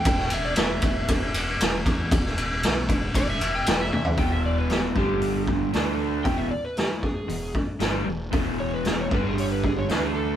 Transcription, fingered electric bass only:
0.05 0.29 E1 loud
0.32 0.55 E1 medium
0.57 0.81 E1 medium
0.82 1.06 E1 medium
1.09 1.33 E1 medium
1.34 1.58 E1 medium
1.60 1.84 E1 medium
1.86 2.10 E2 loud
2.11 2.35 E1 medium
2.36 2.61 E1 medium
2.63 2.87 B1 medium
2.88 3.13 E1 medium
3.14 3.38 E1 medium
3.41 3.65 E1 medium
3.67 3.90 E1 loud
3.93 4.17 E2 medium
4.17 4.91 E1 medium
4.96 5.70 G1 medium
5.75 6.23 D2 medium
6.25 6.50 E1 medium
7.29 7.53 E1 medium
7.80 8.05 G1 medium
8.08 8.32 E1 medium
8.33 9.07 E1 medium
9.11 9.86 G1 medium
9.90 10.36 D2 medium

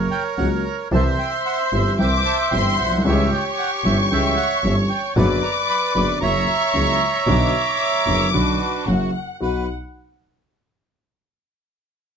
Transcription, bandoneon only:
0.00 0.88 A#4 medium
0.00 0.88 C#5 medium
0.11 0.23 G5 loud
0.38 0.50 F#5 medium
0.65 0.77 A#5 medium
0.92 1.96 C5 medium
0.92 1.71 E5 medium
0.92 1.04 A5 medium
1.19 1.31 G5 medium
1.46 1.58 F#5 loud
1.73 2.00 E5 medium
1.99 3.02 C5 medium
1.99 3.03 E5 medium
1.99 2.11 G5 medium
2.25 2.37 A5 loud
2.51 2.76 G5 loud
2.79 2.99 F#5 medium
3.01 3.06 F#5 medium
3.05 4.08 G4 medium
3.05 4.09 C#5 medium
3.05 3.30 E5 loud
3.32 3.44 G5 medium
3.58 3.70 F#5 loud
3.86 3.97 E5 loud
4.11 5.14 C#5 medium
4.11 4.61 E5 medium
4.11 4.36 G5 loud
4.37 4.62 F#5 loud
4.62 4.75 E5 loud
4.89 5.15 G5 loud
5.16 6.19 B4 medium
5.16 6.19 D5 medium
5.16 5.28 F#5 loud
5.43 5.55 A#5 loud
5.70 5.81 B5 loud
5.95 6.07 B5 loud
6.21 8.30 C#5 medium
6.21 8.30 E5 medium
6.21 8.29 A#5 loud
8.34 8.84 D4 medium
8.34 9.11 F#4 medium
8.34 8.84 B4 medium
9.42 9.67 B4 medium

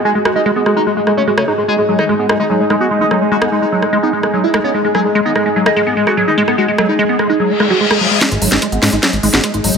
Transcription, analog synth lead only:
0.05 0.10 G#4 loud
0.15 0.20 G#3 medium
0.25 0.30 G#3 medium
0.36 0.41 D#4 medium
0.46 0.51 G#3 medium
0.56 0.61 G#3 medium
0.66 0.71 G#3 medium
0.76 0.81 D#4 medium
0.87 0.92 G#3 medium
0.97 1.02 G#3 medium
1.07 1.12 G#3 medium
1.17 1.22 C#4 medium
1.27 1.32 G#3 medium
1.38 1.43 C#4 medium
1.48 1.53 G#3 medium
1.58 1.63 G#3 medium
1.68 1.73 G#4 loud
1.78 1.83 G#3 medium
1.89 1.94 G#3 medium
1.99 2.04 D#4 medium
2.09 2.14 G#3 medium
2.19 2.24 G#3 medium
2.29 2.34 G#3 medium
2.40 2.45 D#4 medium
2.50 2.55 G#3 medium
2.60 2.65 G#3 medium
2.70 2.75 G#3 medium
2.80 2.85 F#4 medium
2.91 2.96 G#3 medium
3.01 3.06 D#4 loud
3.11 3.16 G#3 medium
3.21 3.26 G#3 medium
3.31 3.37 F#4 loud
3.42 3.47 G#3 medium
3.52 3.57 G#3 medium
3.62 3.67 D#4 medium
3.72 3.77 G#3 medium
3.83 3.88 G#3 medium
3.93 3.98 G#3 medium
4.03 4.08 D#4 medium
4.13 4.18 G#3 medium
4.23 4.28 G#3 medium
4.33 4.39 G#3 medium
4.44 4.49 E4 medium
4.54 4.59 G#3 medium
4.64 4.69 C#4 medium
4.74 4.79 G#3 medium
4.85 4.90 G#3 medium
4.95 5.00 G#4 loud
5.05 5.10 G#3 medium
5.15 5.20 G#3 medium
5.25 5.30 D#4 medium
5.36 5.41 G#3 medium
5.46 5.51 G#3 medium
5.56 5.61 G#3 medium
5.66 5.71 D#4 medium
5.76 5.81 G#3 medium
5.87 5.92 G#3 medium
5.97 6.02 G#3 medium
6.07 6.12 F#4 medium
6.17 6.22 G#3 medium
6.27 6.32 D#4 loud
6.38 6.43 G#3 medium
6.48 6.53 G#3 medium
6.58 6.63 F#4 loud
6.68 6.73 G#3 medium
6.78 6.83 G#3 medium
6.89 6.94 D#4 medium
6.99 7.04 G#3 medium
7.09 7.14 G#3 medium
7.19 7.24 G#3 medium
7.29 7.34 D#4 medium
7.40 7.45 G#3 medium
7.50 7.55 G#3 medium
7.60 7.65 G#3 medium
7.70 7.75 F#4 medium
7.80 7.86 G#3 medium
7.91 7.96 G#4 loud
8.01 8.06 G#3 medium
8.11 8.16 G#3 medium
8.21 8.26 G#4 loud
8.31 8.37 G#3 medium
8.42 8.47 G#3 medium
8.52 8.57 D#4 medium
8.62 8.67 G#3 medium
8.72 8.77 G#3 medium
8.83 8.88 G#3 medium
8.93 8.98 D#4 loud
9.03 9.08 G#3 medium
9.13 9.18 G#3 medium
9.23 9.28 G#3 medium
9.34 9.39 F#4 medium
9.44 9.49 G#3 medium
9.54 9.59 D#4 medium
9.64 9.69 G#3 medium
9.74 9.78 G#3 medium

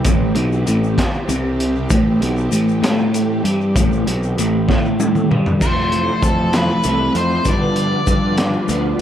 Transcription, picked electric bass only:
0.05 0.34 A1 medium
0.36 0.65 B1 medium
0.67 0.96 A1 medium
1.29 1.86 C2 loud
1.91 2.19 A1 medium
2.22 2.50 B1 medium
2.51 2.80 A1 medium
2.82 3.40 A2 medium
3.44 3.73 G2 medium
3.75 4.04 A1 medium
4.07 4.35 B1 medium
4.38 4.66 A1 medium
4.69 5.26 A2 medium
5.31 5.59 G2 medium
5.61 6.09 F2 medium
6.22 6.70 F2 medium
6.85 7.08 C2 medium
7.15 7.39 F2 medium
7.45 7.93 G2 medium
8.07 8.55 G2 medium
8.69 8.93 D2 medium

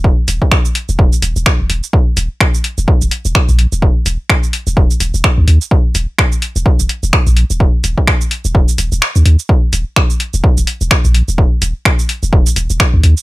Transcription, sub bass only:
0.00 0.12 D#1 loud
0.28 0.39 D#1 loud
0.89 0.97 D#1 medium
0.99 1.09 D#1 medium
1.22 1.33 D#1 loud
1.36 1.44 D#1 loud
1.60 1.67 D#1 medium
1.70 1.80 D#1 medium
2.17 2.28 D#1 loud
2.78 2.86 D#1 medium
3.02 3.09 D#1 medium
3.25 3.33 D#1 medium
3.49 3.66 A#1 loud
3.72 3.90 D#1 loud
4.06 4.17 D#1 loud
4.67 4.75 D#1 medium
4.77 4.87 D#1 loud
5.00 5.11 D#1 loud
5.14 5.22 D#1 loud
5.38 5.45 D#2 medium
5.48 5.58 D#2 medium
5.95 6.06 D#1 loud
6.56 6.64 D#1 medium
6.79 6.87 D#1 medium
7.03 7.11 D#1 loud
7.27 7.44 A#1 loud
7.50 7.68 D#1 loud
7.84 7.94 D#1 loud
8.45 8.52 D#1 medium
8.55 8.65 D#1 loud
8.78 8.89 D#1 medium
8.92 9.00 D#1 loud
9.16 9.23 D#2 medium
9.26 9.36 D#2 medium
9.73 9.83 D#1 loud
10.34 10.41 D#1 medium
10.57 10.65 D#1 medium
10.81 10.89 D#1 loud
11.05 11.22 A#1 loud
11.28 11.46 D#1 loud
11.62 11.72 D#1 loud
12.23 12.30 D#1 medium
12.33 12.43 D#1 loud
12.56 12.67 D#1 medium
12.70 12.78 D#1 loud
12.94 13.01 D#2 medium
13.04 13.14 D#2 medium

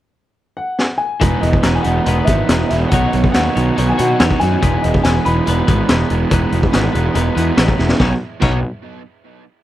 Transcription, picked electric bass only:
1.21 1.35 E1 medium
1.43 1.56 E1 medium
1.64 1.77 E1 medium
1.85 1.99 E1 medium
2.07 2.20 E1 medium
2.28 2.41 G#1 medium
2.49 2.63 E1 medium
2.71 2.84 E1 medium
2.92 3.05 B1 medium
3.14 3.27 B1 medium
3.35 3.48 D#2 medium
3.57 3.70 B1 medium
3.78 3.91 B1 medium
4.00 4.12 B2 medium
4.21 4.33 E2 medium
4.42 4.55 F#2 medium
4.63 4.76 E1 medium
4.85 4.97 E1 medium
5.05 5.18 E1 medium
5.26 5.39 E1 medium
5.48 5.61 E1 medium
5.68 5.81 G#1 medium
5.90 6.03 E1 medium
6.11 6.24 E1 medium
6.31 6.44 E1 medium
6.52 6.66 E1 medium
6.74 6.87 G#1 medium
6.95 7.08 E1 medium
7.15 7.29 E1 medium
7.37 7.50 E2 medium
7.58 7.71 A1 medium
7.79 7.92 E1 medium
8.00 8.12 B1 medium
8.42 8.62 B1 medium

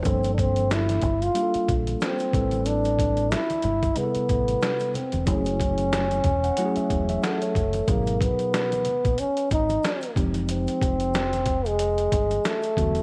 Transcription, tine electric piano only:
0.05 1.04 F3 medium
0.05 1.03 G3 medium
0.05 1.03 A#3 medium
0.05 1.04 D4 medium
0.05 1.04 A4 medium
1.35 2.32 G3 medium
1.35 2.33 A#3 medium
1.35 2.33 D4 medium
1.35 2.33 F4 medium
1.35 1.43 G4 medium
1.43 2.33 A4 medium
2.33 3.39 G3 medium
2.33 3.39 C4 medium
2.33 3.39 E4 medium
2.33 3.39 A4 medium
2.33 3.39 B4 medium
3.96 4.95 C3 medium
3.96 4.94 G3 medium
3.96 4.95 B3 medium
3.96 4.95 E4 medium
3.96 4.04 G#4 medium
4.04 4.98 A4 medium
5.26 6.25 F#3 medium
5.26 6.25 A3 medium
5.26 6.25 C#4 medium
5.26 6.25 E4 medium
5.26 5.35 G4 medium
5.34 6.29 G#4 medium
6.25 6.42 G#5 medium
6.44 6.57 F#5 medium
6.57 7.56 F#3 medium
6.57 7.56 A3 medium
6.57 7.56 C#4 medium
6.57 7.56 E4 medium
6.57 6.66 F#4 medium
6.57 6.75 F#5 medium
6.65 7.59 G#4 loud
6.77 7.07 E5 medium
7.09 7.22 E5 medium
7.23 7.40 F#5 medium
7.42 7.85 C#5 medium
7.87 8.86 B2 medium
7.87 8.86 F#3 medium
7.87 8.86 D#4 medium
7.87 8.86 G#4 medium
7.87 8.86 A#4 medium
10.15 11.21 F3 medium
10.15 11.21 G#3 medium
10.15 11.22 C4 medium
10.15 11.22 D#4 medium
10.15 11.22 G4 medium
12.77 13.03 D3 medium
12.77 13.03 E3 medium
12.77 13.03 G3 medium
12.77 13.03 B3 medium
12.77 13.03 F#4 medium

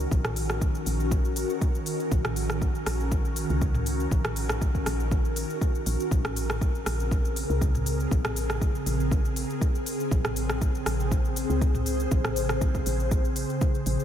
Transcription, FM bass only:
0.11 0.82 A#1 medium
0.86 1.44 A#1 medium
2.12 2.82 A#1 loud
2.86 3.44 A#1 medium
3.50 4.07 C#2 loud
4.11 4.82 A#1 medium
4.86 5.44 A#1 medium
5.86 5.96 A#1 loud
6.11 6.82 A#1 loud
6.86 7.44 A#1 medium
7.50 8.07 C#2 loud
8.11 8.82 A#1 loud
8.86 9.44 A#1 medium
10.11 10.82 A#1 loud
10.86 11.44 A#1 medium
11.50 12.07 C#2 medium
12.11 12.82 A#1 medium
12.86 13.44 A#1 medium
13.86 13.96 A#1 loud

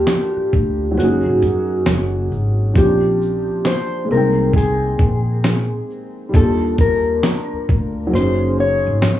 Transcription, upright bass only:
0.37 muted upright bass stroke soft
0.53 0.95 D2 medium
0.97 1.24 F#1 medium
1.26 1.41 G#1 medium
1.42 1.88 F#2 medium
1.87 2.29 F#1 medium
2.32 2.76 G#1 medium
2.76 3.45 A#1 loud
4.11 4.96 C2 medium
5.00 5.69 A#1 medium
6.34 7.19 D#2 loud
7.53 muted upright bass stroke soft
7.70 8.11 D2 medium
8.14 8.83 F#1 loud
8.87 9.02 G#1 medium

